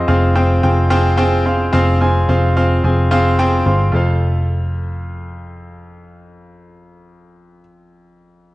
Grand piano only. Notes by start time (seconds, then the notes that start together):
Already playing: C4 F4 G#4 C5 D#5 F5
0.08 C4 F4 G#4 C5 F5
0.35 C4 F4 G#4 C5 G5
0.63 C4 F4 G#4 C5 G5
0.90 C4 F4 G#4 C5 G5
1.17 C4 F4 G#4 C5 G5
1.46 C4 F4 G#4 C5 F5
1.73 C4 F4 G#4 C5 F5
2.01 C4 F4 G#4 C5 G#5
2.28 C4 F4 G#4 C5 F5
2.57 C4 F4 G#4 C5 F5
2.84 C4 F4 G#4 C5 G#5
3.11 C4 F4 G#4 C5 F5
3.39 C4 F4 G#4 C5 G5
3.66 C4 F4 G#4 C5 F5
3.92 F2 F4 A4 C5 F5